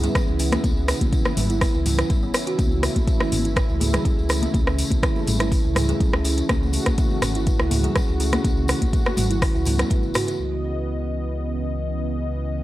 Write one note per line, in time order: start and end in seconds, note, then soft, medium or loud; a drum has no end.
0.00 2.55 C#3 medium
0.00 10.35 E3 medium
0.00 2.55 B3 medium
0.00 6.45 E4 medium
0.00 0.14 G#4 loud
0.00 closed hi-hat medium
0.00 low conga loud
0.04 tambourine soft
0.15 0.27 C#4 medium
0.15 kick loud
0.15 cross-stick medium
0.15 closed hi-hat soft
0.15 tambourine medium
0.28 0.57 C#2 medium
0.28 tambourine soft
0.39 0.51 C#4 medium
0.39 open hi-hat medium
0.39 tambourine medium
0.52 0.63 C#4 medium
0.52 cross-stick medium
0.52 closed hi-hat medium
0.52 tambourine soft
0.52 high conga loud
0.64 0.93 C#2 loud
0.64 0.75 C#4 medium
0.64 kick loud
0.64 closed hi-hat soft
0.64 tambourine medium
0.64 high conga loud
0.77 tambourine soft
0.88 cross-stick medium
0.88 open hi-hat medium
0.88 tambourine medium
1.01 1.08 C#2 medium
1.01 kick medium
1.01 closed hi-hat medium
1.01 tambourine soft
1.01 high conga loud
1.12 kick loud
1.12 closed hi-hat soft
1.12 tambourine soft
1.25 cross-stick medium
1.25 tambourine soft
1.25 high conga medium
1.37 1.66 G#1 loud
1.37 mid tom medium
1.37 open hi-hat medium
1.37 tambourine medium
1.37 high conga medium
1.37 low conga loud
1.50 1.60 E4 medium
1.50 closed hi-hat medium
1.50 tambourine soft
1.61 1.73 B4 medium
1.61 kick loud
1.61 cross-stick medium
1.61 open hi-hat medium
1.61 tambourine soft
1.74 2.03 C#2 medium
1.74 1.84 E4 medium
1.74 tambourine soft
1.86 1.98 E4 medium
1.86 mid tom medium
1.86 open hi-hat medium
1.86 tambourine medium
1.86 low conga loud
1.98 2.05 C#4 medium
1.98 cross-stick medium
1.98 closed hi-hat medium
1.98 tambourine soft
2.10 2.22 B3 medium
2.10 kick loud
2.10 closed hi-hat soft
2.10 tambourine soft
2.10 low conga medium
2.23 2.30 G#1 medium
2.23 2.33 C#5 medium
2.23 tambourine soft
2.34 2.41 C#5 medium
2.34 cross-stick medium
2.34 open hi-hat medium
2.34 tambourine loud
2.47 2.58 F#4 loud
2.47 closed hi-hat medium
2.47 tambourine soft
2.58 2.88 C#2 loud
2.58 10.35 C#3 medium
2.58 10.35 A3 medium
2.58 2.70 C#4 medium
2.58 kick loud
2.58 closed hi-hat soft
2.58 tambourine medium
2.58 high conga medium
2.71 tambourine soft
2.83 cross-stick medium
2.83 open hi-hat medium
2.83 tambourine medium
2.96 3.03 C#2 medium
2.96 kick medium
2.96 closed hi-hat medium
2.96 tambourine soft
2.96 high conga loud
3.07 kick loud
3.07 closed hi-hat soft
3.07 tambourine soft
3.20 cross-stick medium
3.20 tambourine soft
3.20 high conga medium
3.32 3.61 G#1 loud
3.32 mid tom medium
3.32 open hi-hat medium
3.32 tambourine medium
3.32 high conga medium
3.45 3.55 E4 medium
3.45 closed hi-hat medium
3.45 tambourine soft
3.56 3.68 B4 medium
3.56 kick loud
3.56 cross-stick medium
3.56 closed hi-hat soft
3.56 tambourine soft
3.69 3.98 C#2 medium
3.69 3.80 E4 medium
3.69 tambourine soft
3.80 3.92 G#4 medium
3.80 mid tom medium
3.80 open hi-hat medium
3.80 tambourine medium
3.80 high conga medium
3.93 4.04 G#4 loud
3.93 cross-stick medium
3.93 closed hi-hat medium
3.93 low conga loud
4.05 4.17 C#4 medium
4.05 kick loud
4.05 closed hi-hat soft
4.05 tambourine soft
4.18 4.47 C#2 medium
4.18 tambourine soft
4.29 4.41 C#4 medium
4.29 cross-stick medium
4.29 open hi-hat medium
4.29 tambourine medium
4.42 4.53 C#4 medium
4.42 closed hi-hat medium
4.42 tambourine soft
4.42 high conga loud
4.54 4.83 C#2 loud
4.54 4.66 C#4 medium
4.54 kick loud
4.54 closed hi-hat soft
4.54 tambourine soft
4.54 high conga loud
4.67 cross-stick medium
4.67 tambourine soft
4.78 open hi-hat medium
4.78 tambourine loud
4.90 4.98 C#2 medium
4.90 kick medium
4.90 closed hi-hat medium
4.90 tambourine soft
4.90 high conga loud
5.03 kick loud
5.03 cross-stick medium
5.03 closed hi-hat soft
5.03 tambourine medium
5.16 tambourine soft
5.16 high conga medium
5.27 5.57 G#1 loud
5.27 mid tom medium
5.27 open hi-hat medium
5.27 tambourine medium
5.27 high conga medium
5.27 low conga medium
5.40 5.50 E4 medium
5.40 cross-stick medium
5.40 closed hi-hat medium
5.40 tambourine soft
5.52 5.63 B4 medium
5.52 kick loud
5.52 open hi-hat soft
5.52 tambourine medium
5.64 5.93 C#2 loud
5.64 5.75 E4 medium
5.64 tambourine soft
5.75 5.88 G#4 medium
5.75 cross-stick medium
5.75 mid tom medium
5.75 open hi-hat medium
5.75 tambourine medium
5.75 low conga medium
5.89 5.99 G#4 loud
5.89 closed hi-hat medium
5.89 tambourine soft
6.00 6.12 C#4 medium
6.00 kick loud
6.00 closed hi-hat soft
6.00 tambourine soft
6.00 low conga medium
6.13 6.42 C#2 medium
6.13 cross-stick medium
6.13 tambourine soft
6.24 6.36 C#4 medium
6.24 open hi-hat medium
6.24 tambourine medium
6.38 6.48 C#4 medium
6.38 closed hi-hat medium
6.38 tambourine soft
6.49 6.78 C#2 loud
6.49 6.61 C#4 medium
6.49 10.36 F#4 medium
6.49 kick loud
6.49 cross-stick medium
6.49 closed hi-hat soft
6.49 tambourine soft
6.49 high conga loud
6.63 tambourine soft
6.73 open hi-hat medium
6.73 tambourine medium
6.86 6.94 C#2 medium
6.86 kick medium
6.86 cross-stick medium
6.86 closed hi-hat medium
6.86 tambourine soft
6.86 high conga loud
6.98 kick loud
6.98 closed hi-hat soft
6.98 tambourine soft
7.10 tambourine soft
7.10 high conga medium
7.22 7.52 G#1 loud
7.22 cross-stick medium
7.22 mid tom medium
7.22 open hi-hat medium
7.22 tambourine medium
7.22 high conga medium
7.35 7.46 E4 medium
7.35 closed hi-hat medium
7.35 tambourine soft
7.47 7.58 B4 medium
7.47 kick loud
7.47 closed hi-hat soft
7.47 tambourine soft
7.60 7.88 C#2 loud
7.60 7.71 E4 medium
7.60 cross-stick medium
7.60 tambourine soft
7.71 7.83 G#4 medium
7.71 mid tom medium
7.71 open hi-hat medium
7.71 tambourine medium
7.71 high conga medium
7.83 7.94 G#4 loud
7.83 closed hi-hat medium
7.83 tambourine soft
7.83 low conga medium
7.96 8.07 C#4 medium
7.96 kick loud
7.96 cross-stick medium
7.96 closed hi-hat soft
7.96 tambourine medium
8.08 8.37 C#2 medium
8.08 tambourine soft
8.20 8.32 C#4 medium
8.20 open hi-hat medium
8.20 tambourine medium
8.33 8.43 C#4 medium
8.33 cross-stick medium
8.33 closed hi-hat medium
8.33 tambourine soft
8.33 high conga loud
8.44 8.74 C#2 loud
8.44 8.56 C#4 medium
8.44 kick loud
8.44 closed hi-hat soft
8.44 tambourine medium
8.44 high conga loud
8.57 tambourine soft
8.68 cross-stick medium
8.68 open hi-hat medium
8.68 tambourine medium
8.82 8.89 C#2 medium
8.82 kick medium
8.82 closed hi-hat medium
8.82 tambourine soft
8.82 high conga loud
8.93 kick loud
8.93 closed hi-hat soft
8.93 tambourine medium
9.05 cross-stick medium
9.05 tambourine soft
9.05 high conga medium
9.17 9.47 G#1 loud
9.17 mid tom loud
9.17 open hi-hat medium
9.17 tambourine medium
9.17 high conga medium
9.17 low conga loud
9.30 9.41 E4 medium
9.30 closed hi-hat medium
9.30 tambourine soft
9.42 kick loud
9.42 cross-stick medium
9.42 open hi-hat medium
9.42 tambourine soft
9.55 9.84 C#2 loud
9.55 9.66 E4 medium
9.55 tambourine soft
9.65 9.78 B3 medium
9.65 mid tom medium
9.65 open hi-hat medium
9.65 tambourine medium
9.65 low conga medium
9.78 9.89 B3 medium
9.78 cross-stick medium
9.78 closed hi-hat medium
9.78 tambourine soft
9.90 10.02 B4 loud
9.90 kick loud
9.90 closed hi-hat soft
9.90 tambourine soft
9.90 low conga medium
10.03 10.11 G#1 medium
10.03 tambourine soft
10.14 10.26 F#4 medium
10.14 cross-stick medium
10.14 mid tom medium
10.14 open hi-hat medium
10.14 tambourine medium
10.28 10.38 B4 medium
10.28 closed hi-hat medium
10.28 tambourine soft
10.39 12.63 C#2 medium
10.39 12.63 C#3 medium
10.39 12.63 E3 medium
10.39 12.63 B3 medium
10.39 12.63 D#5 medium